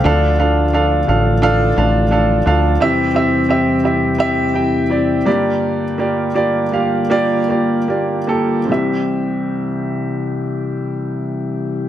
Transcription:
<<
  \new Staff \with { instrumentName = "Upright piano" } { \time 4/4 \key c \mixolydian \tempo 4 = 83 <d' f' a' f''>8 <d' f' a' f''>8 <d' f' a' f''>8 <d' f' a' f''>8 <d' f' a' f''>8 <d' f' a' f''>8 <d' f' a' f''>8 <d' f' a' f''>8 | <c' e' g' e''>8 <c' e' g' e''>8 <c' e' g' e''>8 <c' e' g' e''>8 <c' e' g' e''>8 <c' e' g' g''>8 <c' e' g' d''>8 <bes f' g' d''>8~ | <bes f' g' d''>8 <bes f' g' d''>8 <bes f' g' d''>8 <bes f' g' f''>8 <bes f' g' d''>8 <bes f' g' d''>8 <bes f' g' d''>8 <bes f' g' a'>8 | <c' e' g' e''>1 | }
  \new Staff \with { instrumentName = "Upright piano" } { \clef bass \time 4/4 \key c \mixolydian d4. r2 r8 | e4. r2 g,8~ | g,4 r2. | c,1 | }
  \new Staff \with { instrumentName = "Tonewheel organ" } { \time 4/4 \key c \mixolydian a'1 | g'1~ | g'1 | <c e g e' g'>1 | }
  \new Staff \with { instrumentName = "Tonewheel organ" } { \clef bass \time 4/4 \key c \mixolydian <d f a f'>1 | <e, c e g e'>2.~ <e, c e g e'>8 <d bes f'>8~ | <d bes f'>1 | r1 | }
  \new Staff \with { instrumentName = "Analog synth bass" } { \clef bass \time 4/4 \key c \mixolydian d,4. a,,4 a,,4 d,8 | r1 | r1 | r1 | }
>>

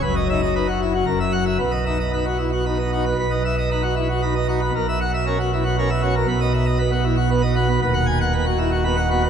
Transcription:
<<
  \new Staff \with { instrumentName = "Pipe organ" } { \time 3/4 \key b \major \tempo 4 = 116 b'16 dis''16 e''16 dis''16 b'16 fis'16 e'16 fis'16 ais'16 e''16 fis''16 e''16 | b'16 dis''16 e''16 dis''16 b'16 fis'16 e'16 fis'16 b'16 dis''16 fis'16 b'16 | b'16 dis''16 e''16 dis''16 b'16 fis'16 e'16 fis'16 b'16 dis''16 fis'16 b'16 | ais'16 e''16 fis''16 e''16 ais'16 fis'16 e'16 fis'16 ais'16 e''16 fis'16 ais'16 |
b'16 dis''16 e''16 dis''16 b'16 fis'16 e'16 fis'16 b'16 dis''16 fis'16 b'16 | b'16 fis''16 gis''16 fis''16 b'16 fis'16 e'16 fis'16 b'16 fis''16 fis'16 b'16 | }
  \new Staff \with { instrumentName = "Pipe organ" } { \time 3/4 \key b \major << { fis,8 dis'16 r16 dis'16 r8. fis,4 | b,8 dis'16 r16 dis'16 r8. dis'16 r16 dis'16 r16 | b,4 dis'16 r8. dis'16 r16 dis'16 r16 | b,4 cis'16 r8. cis'16 r16 cis'16 r16 |
b,4 b16 r8. b16 r16 b16 r16 | dis,4 b16 r8. b16 r16 b16 r16 | } \\ { fis,,2 fis,,4 | b,,2. | b,,2. | b,,2. |
b,,2. | dis,,2. | } >> }
>>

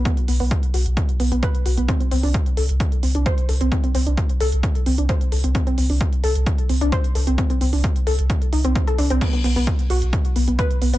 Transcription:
<<
  \new Staff \with { instrumentName = "Synth arpeggio sound" } { \time 4/4 \key b \phrygian \tempo 4 = 131 b16 r16 b16 b16 r8 fis'16 r8. b16 b16 b'16 r16 fis'16 b16 | c'16 c'16 c'16 d'16 r8 a'16 r8. c'16 d'16 c''16 r16 a'16 c'16 | c'16 c'16 c'16 d'16 r8 a'16 r8. c'16 d'16 c''16 r16 a'16 c'16 | c'16 c'16 c'16 d'16 r8 a'16 r8. c'16 d'16 c''16 r16 a'16 c'16 |
c'16 c'16 c'16 d'16 r8 a'16 r8. ees'16 c'16 c'16 a'16 d'16 c'16 | b16 b16 b16 b16 r8 fis'16 r8. b16 b16 b'16 r16 b16 b16 | }
  \new Staff \with { instrumentName = "Sub bass" } { \clef bass \time 4/4 \key b \phrygian r8 b,,16 b,,16 r8 b,,16 b,,16 r8 b,,16 b,,16 r8 b,,16 b,,16 | r8 c,16 c,16 r8 c,16 c,16 r8 c,16 c,16 r8 c,16 c,16 | r8 c,16 c,16 r8 c,16 c,16 r8 c,16 c,16 r8 c,16 c,16 | r8 c,16 c,16 r8 c,16 c,16 r8 c,16 c,16 r8 c,16 c,16 |
r8 c,16 c,16 r8 c,16 c,16 r8 c,16 c,16 r8 c,16 c,16 | r8 b,,16 b,,16 r8 b,,16 b,,16 r8 b,,16 b,,16 r8 b,,16 b,,16 | }
  \new DrumStaff \with { instrumentName = "Drums" } \drummode { \time 4/4 <hh bd>16 hh16 hho16 hho16 <hh bd>16 hh16 hho16 hh16 <hh bd>16 hh16 hho16 hh16 <hh bd>16 hh16 hho16 hh16 | <hh bd>16 hh16 hho16 hho16 <hh bd>16 hh16 hho16 hh16 <hh bd>16 hh16 hho16 hh16 <hh bd>16 hh16 hho16 hh16 | <hh bd>16 hh16 hho16 hh16 <hh bd>16 hh16 hho16 hh16 <hh bd>16 hh16 hho16 hh16 <hh bd>16 hh16 hho16 hh16 | <hh bd>16 hh16 hho16 hho16 <hh bd>16 hh16 hho16 hh16 <hh bd>16 hh16 hho16 hh16 <hh bd>16 hh16 hho16 hh16 |
<hh bd>16 hh16 hho16 hho16 <hh bd>16 hh16 hho16 hh16 <hh bd>16 hh16 hho16 hh16 <hh bd>16 hh16 hho16 hh16 | <cymc hh bd>16 hh16 hho16 hho16 <hh bd>16 hh16 hho16 hh16 <hh bd>16 hh16 hho16 hh16 <hh bd>16 hh16 hho16 hh16 | }
>>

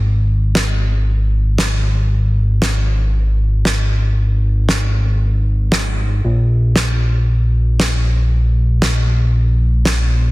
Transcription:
<<
  \new Staff \with { instrumentName = "Analog synth bass" } { \clef bass \time 4/4 \key ais \phrygian \tempo 4 = 116 gis,,1~ | gis,,1~ | gis,,1 | ais,,1~ |
ais,,1 | }
  \new DrumStaff \with { instrumentName = "Drums" } \drummode { \time 4/4 r4 sn4 r4 sn4 | r4 sn4 r4 sn4 | r4 sn4 r4 sn4 | r4 sn4 r4 sn4 |
r4 sn4 r4 sn4 | }
>>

